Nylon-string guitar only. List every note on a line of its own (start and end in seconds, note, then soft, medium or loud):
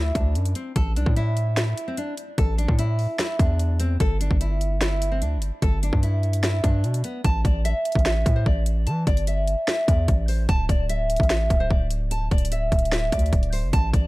0.00 0.11 E4 medium
0.15 0.53 D4 medium
0.56 0.71 C4 medium
0.76 0.92 A4 loud
0.97 1.12 D4 medium
1.17 1.55 E4 medium
1.57 1.86 E4 medium
1.88 1.95 C4 medium
1.98 2.13 D4 medium
2.38 2.54 A4 medium
2.58 2.74 D4 medium
2.79 3.17 E4 medium
3.19 3.35 E4 medium
3.39 3.78 D4 medium
3.80 3.96 C4 medium
4.01 4.16 A4 loud
4.21 4.36 D4 medium
4.41 4.79 E4 medium
4.81 5.10 E4 medium
5.12 5.19 C4 medium
5.22 5.37 D4 medium
5.62 5.78 A4 loud
5.83 5.99 D4 medium
6.03 6.41 E4 medium
6.43 6.59 E4 medium
6.64 7.02 D4 medium
7.04 7.20 B3 medium
7.24 7.40 A5 loud
7.45 7.60 D5 medium
7.65 8.03 E5 loud
8.06 8.34 E5 medium
8.36 8.44 C5 medium
8.46 8.62 D5 medium
8.87 9.02 A5 loud
9.07 9.23 D5 medium
9.28 9.65 E5 medium
9.68 9.84 E5 medium
9.88 10.26 D5 medium
10.29 10.44 C5 medium
10.49 10.65 A5 loud
10.69 10.85 D5 medium
10.89 11.28 E5 medium
11.30 11.58 E5 medium
11.60 11.68 C5 medium
11.71 11.86 D5 medium
12.11 12.27 A5 loud
12.31 12.47 D5 medium
12.52 12.90 E5 medium
12.92 13.08 E5 medium
13.13 13.51 D5 medium
13.53 13.69 C5 medium
13.73 13.89 A5 loud
13.94 14.07 D5 medium